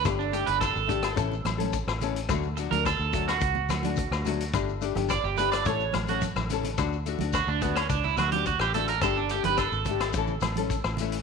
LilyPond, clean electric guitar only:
\new Staff \with { instrumentName = "Clean electric guitar" } { \time 4/4 \key d \major \tempo 4 = 107 r16 d'16 g'16 b'16 a'4. r4. | r8. bes'16 a'8. fis'2~ fis'16~ | fis'16 r8. d''16 g'16 b'16 d''16 cis''8 r16 fis'16 r4 | r4 fis'16 d'16 b16 cis'16 d'16 e'16 fis'16 g'16 fis'16 g'16 a'16 bes'16 |
a'16 d'16 g'16 b'16 a'2. | }